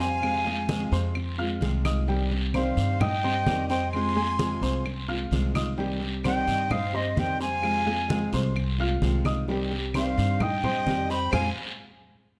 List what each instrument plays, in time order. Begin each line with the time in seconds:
Already playing: upright bass F2
0.00 nylon-string guitar G3 C4 G4, grand piano C4 C5 C6, violin section F5, flute G#5, short guiro
0.21 nylon-string guitar C3 F3 G#3 C4 F4, high conga, long guiro, claves
0.45 grand piano G#3 G#4 G#5, nylon-string guitar G#3 C4 F4, high conga
0.68 nylon-string guitar C3 F3 G#3 C4 F4, high conga, short guiro
0.92 upright bass F2, grand piano C4 C5 C6, high conga, short guiro
1.15 muted nylon-string guitar stroke, high conga, long guiro, claves
1.38 nylon-string guitar G#3 C4 F4, grand piano F4 F5 F6, high conga
1.61 upright bass C2, nylon-string guitar C3 F3 G#3 C4 F4, high conga, short guiro
1.85 nylon-string guitar G#3 C4 F4, grand piano D#4 D#5 D#6, high conga, short guiro, claves
2.07 nylon-string guitar C3 D#3 G3 C4 G4, grand piano G3 G4 G5, high conga, long guiro
2.31 nylon-string guitar G3 C4 G4, high conga
2.54 nylon-string guitar C3 D#3 G3 C4 G4, grand piano C4 C5 C6, violin section C5, flute F5, high conga, short guiro, claves
2.77 upright bass G2, high conga, short guiro
3.00 grand piano D#4 D#5 D#6, violin section D#5, flute G5, muted nylon-string guitar stroke, high conga, low conga, long guiro, claves
3.24 nylon-string guitar G3 C4 G4, grand piano C4 C5 C6, high conga
3.46 upright bass F2, nylon-string guitar C3 D#3 G3 C4 G4, high conga, short guiro
3.69 grand piano C4 C5 C6, nylon-string guitar C4 G4, violin section D#5, flute G5, short guiro
3.73 nylon-string guitar G3
3.92 nylon-string guitar C3 F3 G#3 C4, violin section G#5, flute C6, high conga, long guiro, claves
3.96 nylon-string guitar F4
4.16 grand piano G#3 G#4 G#5, nylon-string guitar G#3 C4 F4, high conga
4.39 nylon-string guitar C3 F3 G#3 C4 F4, high conga, short guiro
4.62 upright bass C2, grand piano C4 C5 C6, high conga, short guiro
4.86 muted nylon-string guitar stroke, high conga, long guiro, claves
5.08 nylon-string guitar G#3 C4 F4, grand piano F4 F5 F6, high conga
5.31 upright bass C2, nylon-string guitar C3 F3 G#3 C4 F4, high conga, short guiro
5.54 nylon-string guitar G#3 C4 F4, grand piano D#4 D#5 D#6, high conga, short guiro, claves
5.77 nylon-string guitar C3 D#3 G3 C4 G4, grand piano G3 G4 G5, high conga, long guiro
6.00 nylon-string guitar G3 C4 G4, high conga
6.23 nylon-string guitar C3 D#3 G3 C4 G4, grand piano C4 C5 C6, violin section D#5, flute G5, high conga, short guiro, claves
6.47 upright bass G2, high conga, short guiro
6.70 grand piano D#4 D#5 D#6, violin section C5, flute F5, muted nylon-string guitar stroke, high conga, low conga, long guiro, claves
6.93 nylon-string guitar G3 C4 G4, grand piano C4 C5 C6, violin section C5, flute D#5, high conga
7.16 upright bass F2, nylon-string guitar C3 D#3 G3 C4 G4, violin section D#5, flute G5, high conga, short guiro
7.40 nylon-string guitar G3 C4 G4, grand piano C4 C5 C6, violin section F5, flute G#5, short guiro
7.62 nylon-string guitar C3 F3 G#3 C4 F4, high conga, long guiro, claves
7.85 grand piano G#3 G#4 G#5, nylon-string guitar G#3 C4 F4, high conga
8.08 nylon-string guitar C3 F3 G#3 C4 F4, high conga, short guiro
8.33 upright bass C2, grand piano C4 C5 C6, high conga, short guiro
8.55 muted nylon-string guitar stroke, high conga, long guiro, claves
8.78 nylon-string guitar G#3 C4 F4, grand piano F4 F5 F6, high conga
9.02 upright bass C2, nylon-string guitar C3 F3 G#3 C4 F4, high conga, short guiro
9.25 nylon-string guitar G#3 C4 F4, grand piano D#4 D#5 D#6, high conga, short guiro, claves
9.48 nylon-string guitar C3 D#3 G3 C4 G4, grand piano G3 G4 G5, high conga, long guiro
9.72 nylon-string guitar G3 C4 G4, high conga
9.94 nylon-string guitar C3 D#3 G3 C4 G4, grand piano C4 C5 C6, violin section C5, flute F5, high conga, short guiro, claves
10.17 upright bass G2, high conga, short guiro
10.40 grand piano D#4 D#5 D#6, violin section D#5, flute G5, muted nylon-string guitar stroke, high conga, low conga, long guiro, claves
10.64 nylon-string guitar G3 C4 G4, grand piano C4 C5 C6, high conga, low conga
10.87 upright bass F2, nylon-string guitar C3 D#3 G3 C4 G4, high conga, short guiro
11.09 nylon-string guitar G3 C4 G4, grand piano C4 C5 C6, violin section G5, flute B5, short guiro
11.32 upright bass F2, nylon-string guitar F3 G#3 C4, grand piano G#4 C5 F5, violin section C5 F5 G#5, flute G#5, low conga, long guiro, claves